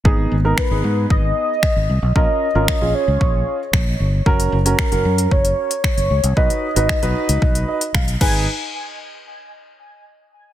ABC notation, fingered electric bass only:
X:1
M:4/4
L:1/16
Q:1/4=114
K:G#dor
V:1 name="Fingered electric bass" clef=bass
G,,,2 G,,,2 z G,,, G,,2 G,,,2 z3 G,,, ^B,,, =B,,, | A,,, z2 G,,, z A,,, z C,, A,,,2 z2 A,,,2 =G,,,2 | F,,,2 F,,,2 z F,,, F,,2 F,,,2 z3 F,,, C,, ^B,,, | z3 G,,, z B,,, z C,, B,,,2 z2 B,,,2 G,,,2 |
z16 |]